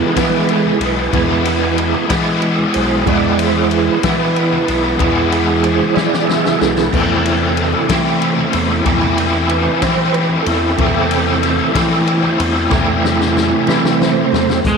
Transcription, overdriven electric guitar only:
Already playing: E3 G#3 B3 E4
0.15 E3 G#3 B3 E4
1.12 E3 G#3 B3 E4
2.09 E3 G#3 B3 E4
3.07 E3 G#3 B3 E4
4.04 E3 G#3 B3 E4
5.00 E3 G#3 B3 E4
5.96 E3 G#3 B3 E4
6.92 E3 A3 C4 E4
7.90 E3 A3 C4 E4
8.86 E3 A3 C4 E4
9.82 E3 A3 C4 E4
10.78 E3 A3 C4 E4
11.74 E3 A3 C4 E4
12.71 E3 A3 C4 E4
13.68 E3 A3 C4 E4

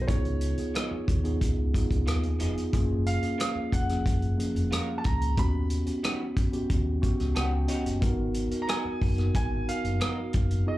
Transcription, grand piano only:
0.02 C5
0.08 C#5
3.07 F5
3.73 F#5
4.98 A5
5.05 A#5
5.39 B5
8.62 A#5
8.69 G#5
9.35 G#5
9.69 F5
10.68 D#5

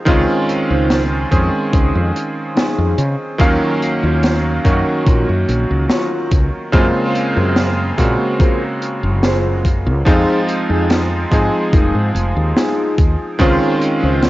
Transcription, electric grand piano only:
0.05 D#3 G#3 C4 C#4 F4
1.31 D#3 G#3 C4 C#4 G#4
3.38 D#3 F#3 A#3 C#4 F5
4.64 D#3 F#3 A#3 C#4 F#4
6.72 C#3 G#3 A#3 C4 F4
7.97 C#3 G#3 A#3 C4 F#4
10.05 F3 G#3 C4 D#4 F4
11.31 F3 G#3 C4 D#4 G#4
13.39 D#3 G#3 C4 C#4 F4

